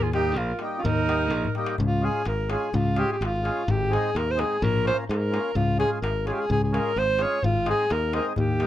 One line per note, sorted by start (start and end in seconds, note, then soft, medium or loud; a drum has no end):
0.00 0.37 D#2 loud
0.00 0.13 F4 medium
0.00 0.13 G#4 medium
0.13 0.33 G3 medium
0.13 0.33 A#3 soft
0.13 0.36 D#4 medium
0.13 0.34 D#4 soft
0.13 0.39 G4 loud
0.13 0.34 G4 medium
0.13 darbuka tek medium
0.27 darbuka tek soft
0.35 0.52 A#1 medium
0.35 0.61 F4 medium
0.35 0.60 A#4 medium
0.35 darbuka tek medium
0.50 darbuka tek soft
0.59 0.80 G3 soft
0.59 0.80 A#3 soft
0.59 0.81 D#4 soft
0.59 0.81 G4 medium
0.59 darbuka tek medium
0.77 0.85 C#4 medium
0.77 0.88 F4 medium
0.83 1.32 D#2 loud
0.83 1.56 D#4 loud
0.83 1.55 A#4 loud
0.83 darbuka dum medium
0.98 darbuka tek soft
1.07 1.27 G3 soft
1.07 1.27 A#3 soft
1.07 1.28 D#4 soft
1.07 1.28 G4 medium
1.07 darbuka tek medium
1.21 darbuka tek soft
1.31 1.46 A#1 medium
1.31 darbuka tek medium
1.45 darbuka dum soft
1.55 1.75 G3 medium
1.55 1.75 A#3 medium
1.55 1.75 D#4 medium
1.55 1.76 G4 medium
1.55 darbuka tek medium
1.66 darbuka tek medium
1.78 2.08 C#2 loud
1.78 2.06 F4 medium
1.78 darbuka dum medium
1.92 darbuka tek soft
2.01 2.22 G#3 medium
2.01 2.22 C#4 soft
2.01 2.22 F4 soft
2.01 2.23 G#4 medium
2.01 2.27 G#4 medium
2.16 darbuka tek soft
2.25 2.55 G#1 medium
2.25 2.49 A#4 medium
2.25 darbuka tek medium
2.40 darbuka tek soft
2.49 2.69 G#3 soft
2.49 2.69 C#4 medium
2.49 2.70 F4 medium
2.49 2.70 G#4 medium
2.49 2.76 G#4 medium
2.49 darbuka tek medium
2.64 darbuka tek soft
2.74 3.02 C#2 loud
2.74 3.00 F4 medium
2.74 darbuka dum medium
2.87 darbuka tek soft
2.96 3.16 G#3 medium
2.96 3.16 C#4 soft
2.96 3.16 F4 soft
2.96 3.11 G4 medium
2.96 3.17 G#4 medium
2.96 darbuka tek medium
3.11 3.21 G4 medium
3.11 darbuka tek soft
3.21 3.49 G#1 medium
3.21 darbuka tek medium
3.25 3.72 F4 medium
3.36 darbuka tek soft
3.43 3.63 G#3 medium
3.43 3.63 C#4 medium
3.43 3.63 F4 soft
3.43 3.64 G#4 medium
3.43 darbuka tek medium
3.58 darbuka tek soft
3.68 3.96 G#1 loud
3.68 3.95 G4 medium
3.68 darbuka dum medium
3.82 darbuka tek soft
3.90 4.10 G#3 medium
3.90 4.10 C4 medium
3.90 4.10 D#4 soft
3.90 4.10 G#4 medium
3.90 4.19 G#4 loud
3.90 darbuka tek medium
4.06 darbuka tek soft
4.15 4.43 D#2 medium
4.15 4.33 A#4 medium
4.15 darbuka tek medium
4.29 4.42 C5 medium
4.29 darbuka tek soft
4.35 4.56 G#3 soft
4.35 4.56 C4 soft
4.35 4.57 D#4 soft
4.35 4.57 G#4 medium
4.35 darbuka tek medium
4.40 4.65 G#4 medium
4.53 darbuka tek soft
4.62 4.90 A#1 loud
4.62 4.86 A#4 loud
4.62 darbuka dum medium
4.77 darbuka tek soft
4.84 5.04 A#3 medium
4.84 5.04 C#4 soft
4.84 5.04 F4 medium
4.84 5.05 A#4 medium
4.84 4.97 C5 loud
4.84 darbuka tek medium
5.00 darbuka tek soft
5.09 5.37 G#2 medium
5.09 5.58 A#4 medium
5.09 darbuka tek medium
5.24 darbuka tek soft
5.30 5.50 A#3 soft
5.30 5.51 C#4 soft
5.30 5.51 F4 soft
5.30 5.52 A#4 medium
5.30 darbuka tek medium
5.55 5.83 C#2 loud
5.55 5.79 F4 loud
5.55 darbuka dum medium
5.69 darbuka tek soft
5.78 5.98 G#3 medium
5.78 5.98 C#4 soft
5.78 5.99 F4 medium
5.78 5.90 G#4 loud
5.78 5.99 G#4 medium
5.78 darbuka tek medium
6.02 6.31 G#1 medium
6.02 6.24 A#4 medium
6.02 darbuka tek medium
6.16 darbuka tek soft
6.26 6.45 G#3 soft
6.26 6.45 C#4 soft
6.26 6.45 F4 soft
6.26 6.46 G#4 medium
6.26 6.34 G#4 medium
6.26 darbuka tek medium
6.32 6.42 G4 medium
6.40 6.50 G#4 medium
6.40 darbuka tek soft
6.50 6.78 C#2 loud
6.50 6.62 G#4 loud
6.50 darbuka dum medium
6.63 6.75 G#4 medium
6.63 darbuka tek soft
6.72 6.92 G#3 medium
6.72 6.92 C#4 soft
6.72 6.92 F4 soft
6.72 6.92 G#4 medium
6.72 7.00 A#4 medium
6.72 darbuka tek medium
6.86 darbuka tek soft
6.96 7.24 G#1 medium
6.96 7.24 C5 loud
6.96 darbuka tek medium
7.10 darbuka tek soft
7.18 7.38 G#3 soft
7.18 7.39 C#4 soft
7.18 7.39 F4 soft
7.18 7.39 G#4 medium
7.18 7.46 C#5 medium
7.18 darbuka tek medium
7.32 darbuka tek soft
7.43 7.72 G#1 loud
7.43 7.67 F4 loud
7.43 darbuka dum medium
7.56 darbuka tek soft
7.65 7.85 G#3 medium
7.65 7.85 C4 medium
7.65 7.86 D#4 medium
7.65 7.86 G#4 medium
7.65 darbuka tek medium
7.70 7.94 G#4 loud
7.79 darbuka tek soft
7.90 8.19 D#2 medium
7.90 8.15 A#4 medium
7.90 darbuka tek medium
8.02 darbuka tek soft
8.13 8.32 G#3 soft
8.13 8.33 C4 soft
8.13 8.33 D#4 soft
8.13 8.34 G#4 medium
8.13 8.26 A#4 medium
8.13 darbuka tek medium
8.27 darbuka tek soft
8.36 8.66 D#2 medium
8.36 8.67 G4 medium
8.36 darbuka dum medium
8.48 darbuka tek soft
8.60 8.67 G3 medium
8.60 8.67 A#3 medium
8.60 8.67 D#4 medium
8.60 8.67 G4 medium
8.60 darbuka tek medium